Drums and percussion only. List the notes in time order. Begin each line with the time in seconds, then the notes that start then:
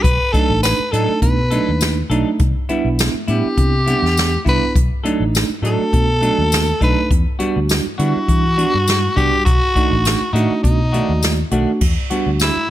0.04 kick, closed hi-hat
0.34 kick, closed hi-hat
0.63 snare, closed hi-hat, tambourine
0.93 closed hi-hat
1.22 kick, closed hi-hat
1.51 closed hi-hat
1.81 snare, closed hi-hat, tambourine
2.11 closed hi-hat
2.39 kick, closed hi-hat
2.69 closed hi-hat
2.99 snare, closed hi-hat, tambourine
3.28 closed hi-hat
3.57 kick, closed hi-hat
3.87 closed hi-hat
4.06 snare
4.17 snare, closed hi-hat, tambourine
4.46 kick, closed hi-hat
4.76 kick, closed hi-hat
5.05 closed hi-hat
5.35 snare, closed hi-hat, tambourine
5.64 closed hi-hat
5.93 kick, closed hi-hat
6.22 closed hi-hat
6.52 snare, closed hi-hat, tambourine
6.81 kick, closed hi-hat
7.11 kick, closed hi-hat
7.40 closed hi-hat
7.69 snare, closed hi-hat, tambourine
7.99 closed hi-hat
8.28 kick, closed hi-hat
8.58 closed hi-hat
8.88 snare, closed hi-hat, tambourine
9.17 kick, closed hi-hat
9.46 kick, closed hi-hat
9.76 kick, closed hi-hat
10.05 snare, closed hi-hat, tambourine
10.35 closed hi-hat
10.64 kick, closed hi-hat
10.94 closed hi-hat
11.23 snare, closed hi-hat, tambourine
11.51 closed hi-hat
11.81 kick, crash
12.10 closed hi-hat
12.40 snare, closed hi-hat, tambourine